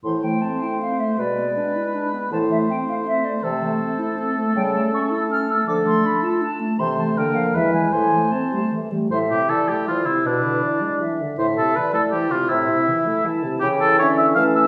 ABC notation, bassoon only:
X:1
M:3/4
L:1/8
Q:1/4=160
K:Am
V:1 name="Bassoon" clef=bass
A,,2 z4 | B,,2 z4 | A,,2 z4 | C,2 z4 |
^C,2 z4 | D,2 z4 | C,2 D,2 E,,2 | A,,2 z4 |
A,,2 z4 | B,,2 z4 | A,,2 z4 | C,2 z4 |
^C,2 D,2 E,2 |]